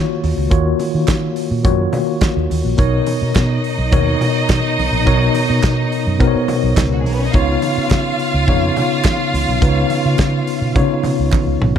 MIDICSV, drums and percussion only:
0, 0, Header, 1, 2, 480
1, 0, Start_track
1, 0, Tempo, 568720
1, 434, Time_signature, 4, 2, 24, 8
1, 9948, End_track
2, 0, Start_track
2, 0, Title_t, "Drums"
2, 197, Note_on_c, 9, 63, 61
2, 200, Note_on_c, 9, 46, 70
2, 282, Note_off_c, 9, 63, 0
2, 284, Note_off_c, 9, 46, 0
2, 431, Note_on_c, 9, 42, 77
2, 434, Note_on_c, 9, 36, 119
2, 516, Note_off_c, 9, 42, 0
2, 518, Note_off_c, 9, 36, 0
2, 670, Note_on_c, 9, 62, 61
2, 672, Note_on_c, 9, 46, 53
2, 754, Note_off_c, 9, 62, 0
2, 756, Note_off_c, 9, 46, 0
2, 906, Note_on_c, 9, 42, 66
2, 911, Note_on_c, 9, 39, 91
2, 913, Note_on_c, 9, 36, 121
2, 915, Note_on_c, 9, 38, 127
2, 918, Note_on_c, 9, 63, 92
2, 990, Note_off_c, 9, 42, 0
2, 995, Note_off_c, 9, 39, 0
2, 998, Note_off_c, 9, 36, 0
2, 999, Note_off_c, 9, 38, 0
2, 1002, Note_off_c, 9, 63, 0
2, 1148, Note_on_c, 9, 46, 54
2, 1232, Note_off_c, 9, 46, 0
2, 1388, Note_on_c, 9, 42, 67
2, 1390, Note_on_c, 9, 36, 127
2, 1394, Note_on_c, 9, 64, 93
2, 1473, Note_off_c, 9, 42, 0
2, 1475, Note_off_c, 9, 36, 0
2, 1478, Note_off_c, 9, 64, 0
2, 1626, Note_on_c, 9, 62, 66
2, 1626, Note_on_c, 9, 64, 94
2, 1628, Note_on_c, 9, 46, 50
2, 1711, Note_off_c, 9, 62, 0
2, 1711, Note_off_c, 9, 64, 0
2, 1712, Note_off_c, 9, 46, 0
2, 1865, Note_on_c, 9, 42, 77
2, 1870, Note_on_c, 9, 36, 123
2, 1873, Note_on_c, 9, 38, 124
2, 1877, Note_on_c, 9, 39, 110
2, 1878, Note_on_c, 9, 63, 80
2, 1949, Note_off_c, 9, 42, 0
2, 1955, Note_off_c, 9, 36, 0
2, 1958, Note_off_c, 9, 38, 0
2, 1961, Note_off_c, 9, 39, 0
2, 1963, Note_off_c, 9, 63, 0
2, 2112, Note_on_c, 9, 63, 63
2, 2119, Note_on_c, 9, 46, 70
2, 2196, Note_off_c, 9, 63, 0
2, 2204, Note_off_c, 9, 46, 0
2, 2346, Note_on_c, 9, 42, 80
2, 2353, Note_on_c, 9, 36, 118
2, 2430, Note_off_c, 9, 42, 0
2, 2437, Note_off_c, 9, 36, 0
2, 2586, Note_on_c, 9, 46, 63
2, 2589, Note_on_c, 9, 62, 63
2, 2671, Note_off_c, 9, 46, 0
2, 2674, Note_off_c, 9, 62, 0
2, 2825, Note_on_c, 9, 42, 64
2, 2832, Note_on_c, 9, 39, 86
2, 2834, Note_on_c, 9, 36, 120
2, 2834, Note_on_c, 9, 38, 121
2, 2838, Note_on_c, 9, 63, 96
2, 2909, Note_off_c, 9, 42, 0
2, 2916, Note_off_c, 9, 39, 0
2, 2918, Note_off_c, 9, 36, 0
2, 2918, Note_off_c, 9, 38, 0
2, 2923, Note_off_c, 9, 63, 0
2, 3072, Note_on_c, 9, 46, 55
2, 3156, Note_off_c, 9, 46, 0
2, 3310, Note_on_c, 9, 42, 68
2, 3313, Note_on_c, 9, 36, 127
2, 3315, Note_on_c, 9, 64, 91
2, 3395, Note_off_c, 9, 42, 0
2, 3398, Note_off_c, 9, 36, 0
2, 3399, Note_off_c, 9, 64, 0
2, 3553, Note_on_c, 9, 62, 58
2, 3553, Note_on_c, 9, 64, 87
2, 3557, Note_on_c, 9, 46, 55
2, 3637, Note_off_c, 9, 62, 0
2, 3637, Note_off_c, 9, 64, 0
2, 3641, Note_off_c, 9, 46, 0
2, 3788, Note_on_c, 9, 42, 78
2, 3793, Note_on_c, 9, 36, 115
2, 3797, Note_on_c, 9, 38, 122
2, 3798, Note_on_c, 9, 39, 105
2, 3804, Note_on_c, 9, 63, 81
2, 3873, Note_off_c, 9, 42, 0
2, 3877, Note_off_c, 9, 36, 0
2, 3881, Note_off_c, 9, 38, 0
2, 3882, Note_off_c, 9, 39, 0
2, 3888, Note_off_c, 9, 63, 0
2, 4037, Note_on_c, 9, 63, 59
2, 4045, Note_on_c, 9, 46, 74
2, 4121, Note_off_c, 9, 63, 0
2, 4130, Note_off_c, 9, 46, 0
2, 4276, Note_on_c, 9, 42, 74
2, 4277, Note_on_c, 9, 36, 127
2, 4277, Note_on_c, 9, 62, 35
2, 4361, Note_off_c, 9, 42, 0
2, 4362, Note_off_c, 9, 36, 0
2, 4362, Note_off_c, 9, 62, 0
2, 4510, Note_on_c, 9, 62, 61
2, 4511, Note_on_c, 9, 46, 62
2, 4594, Note_off_c, 9, 62, 0
2, 4596, Note_off_c, 9, 46, 0
2, 4750, Note_on_c, 9, 42, 64
2, 4754, Note_on_c, 9, 39, 93
2, 4755, Note_on_c, 9, 63, 96
2, 4756, Note_on_c, 9, 36, 127
2, 4760, Note_on_c, 9, 38, 112
2, 4835, Note_off_c, 9, 42, 0
2, 4839, Note_off_c, 9, 39, 0
2, 4840, Note_off_c, 9, 63, 0
2, 4841, Note_off_c, 9, 36, 0
2, 4844, Note_off_c, 9, 38, 0
2, 4996, Note_on_c, 9, 46, 51
2, 5080, Note_off_c, 9, 46, 0
2, 5231, Note_on_c, 9, 64, 86
2, 5236, Note_on_c, 9, 36, 121
2, 5238, Note_on_c, 9, 42, 73
2, 5316, Note_off_c, 9, 64, 0
2, 5321, Note_off_c, 9, 36, 0
2, 5322, Note_off_c, 9, 42, 0
2, 5471, Note_on_c, 9, 62, 64
2, 5471, Note_on_c, 9, 64, 95
2, 5475, Note_on_c, 9, 46, 53
2, 5556, Note_off_c, 9, 62, 0
2, 5556, Note_off_c, 9, 64, 0
2, 5560, Note_off_c, 9, 46, 0
2, 5711, Note_on_c, 9, 42, 81
2, 5715, Note_on_c, 9, 36, 127
2, 5716, Note_on_c, 9, 39, 104
2, 5718, Note_on_c, 9, 63, 79
2, 5720, Note_on_c, 9, 38, 127
2, 5795, Note_off_c, 9, 42, 0
2, 5799, Note_off_c, 9, 36, 0
2, 5801, Note_off_c, 9, 39, 0
2, 5803, Note_off_c, 9, 63, 0
2, 5804, Note_off_c, 9, 38, 0
2, 5955, Note_on_c, 9, 63, 58
2, 5961, Note_on_c, 9, 46, 70
2, 6040, Note_off_c, 9, 63, 0
2, 6045, Note_off_c, 9, 46, 0
2, 6191, Note_on_c, 9, 42, 75
2, 6196, Note_on_c, 9, 36, 113
2, 6196, Note_on_c, 9, 62, 31
2, 6275, Note_off_c, 9, 42, 0
2, 6280, Note_off_c, 9, 62, 0
2, 6281, Note_off_c, 9, 36, 0
2, 6432, Note_on_c, 9, 46, 61
2, 6433, Note_on_c, 9, 62, 63
2, 6516, Note_off_c, 9, 46, 0
2, 6517, Note_off_c, 9, 62, 0
2, 6670, Note_on_c, 9, 42, 64
2, 6672, Note_on_c, 9, 39, 87
2, 6677, Note_on_c, 9, 36, 122
2, 6679, Note_on_c, 9, 38, 118
2, 6680, Note_on_c, 9, 63, 95
2, 6754, Note_off_c, 9, 42, 0
2, 6757, Note_off_c, 9, 39, 0
2, 6762, Note_off_c, 9, 36, 0
2, 6763, Note_off_c, 9, 38, 0
2, 6764, Note_off_c, 9, 63, 0
2, 6914, Note_on_c, 9, 46, 51
2, 6999, Note_off_c, 9, 46, 0
2, 7156, Note_on_c, 9, 36, 123
2, 7156, Note_on_c, 9, 42, 59
2, 7158, Note_on_c, 9, 64, 81
2, 7241, Note_off_c, 9, 36, 0
2, 7241, Note_off_c, 9, 42, 0
2, 7242, Note_off_c, 9, 64, 0
2, 7397, Note_on_c, 9, 62, 62
2, 7397, Note_on_c, 9, 64, 86
2, 7399, Note_on_c, 9, 46, 49
2, 7482, Note_off_c, 9, 62, 0
2, 7482, Note_off_c, 9, 64, 0
2, 7484, Note_off_c, 9, 46, 0
2, 7634, Note_on_c, 9, 39, 119
2, 7634, Note_on_c, 9, 42, 77
2, 7636, Note_on_c, 9, 36, 127
2, 7642, Note_on_c, 9, 38, 119
2, 7650, Note_on_c, 9, 63, 88
2, 7718, Note_off_c, 9, 42, 0
2, 7719, Note_off_c, 9, 39, 0
2, 7720, Note_off_c, 9, 36, 0
2, 7727, Note_off_c, 9, 38, 0
2, 7735, Note_off_c, 9, 63, 0
2, 7886, Note_on_c, 9, 46, 68
2, 7886, Note_on_c, 9, 63, 54
2, 7970, Note_off_c, 9, 46, 0
2, 7970, Note_off_c, 9, 63, 0
2, 8119, Note_on_c, 9, 36, 123
2, 8120, Note_on_c, 9, 42, 69
2, 8125, Note_on_c, 9, 62, 33
2, 8203, Note_off_c, 9, 36, 0
2, 8204, Note_off_c, 9, 42, 0
2, 8209, Note_off_c, 9, 62, 0
2, 8355, Note_on_c, 9, 46, 58
2, 8356, Note_on_c, 9, 62, 62
2, 8439, Note_off_c, 9, 46, 0
2, 8440, Note_off_c, 9, 62, 0
2, 8594, Note_on_c, 9, 42, 71
2, 8600, Note_on_c, 9, 36, 118
2, 8600, Note_on_c, 9, 39, 78
2, 8603, Note_on_c, 9, 38, 125
2, 8605, Note_on_c, 9, 63, 84
2, 8678, Note_off_c, 9, 42, 0
2, 8684, Note_off_c, 9, 36, 0
2, 8684, Note_off_c, 9, 39, 0
2, 8687, Note_off_c, 9, 38, 0
2, 8689, Note_off_c, 9, 63, 0
2, 8839, Note_on_c, 9, 46, 57
2, 8923, Note_off_c, 9, 46, 0
2, 9078, Note_on_c, 9, 64, 90
2, 9079, Note_on_c, 9, 36, 127
2, 9082, Note_on_c, 9, 42, 64
2, 9162, Note_off_c, 9, 64, 0
2, 9163, Note_off_c, 9, 36, 0
2, 9166, Note_off_c, 9, 42, 0
2, 9313, Note_on_c, 9, 62, 65
2, 9313, Note_on_c, 9, 64, 84
2, 9321, Note_on_c, 9, 46, 56
2, 9397, Note_off_c, 9, 62, 0
2, 9397, Note_off_c, 9, 64, 0
2, 9405, Note_off_c, 9, 46, 0
2, 9558, Note_on_c, 9, 39, 105
2, 9559, Note_on_c, 9, 36, 126
2, 9562, Note_on_c, 9, 63, 90
2, 9566, Note_on_c, 9, 48, 64
2, 9642, Note_off_c, 9, 39, 0
2, 9644, Note_off_c, 9, 36, 0
2, 9646, Note_off_c, 9, 63, 0
2, 9651, Note_off_c, 9, 48, 0
2, 9797, Note_on_c, 9, 63, 57
2, 9804, Note_on_c, 9, 45, 104
2, 9882, Note_off_c, 9, 63, 0
2, 9889, Note_off_c, 9, 45, 0
2, 9948, End_track
0, 0, End_of_file